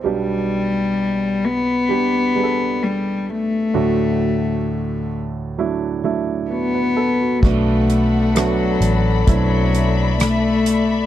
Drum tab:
CC |--------|--------|x-------|
HH |--------|--------|-xxxxxxx|
SD |--------|--------|--r---r-|
BD |--------|--------|o---o---|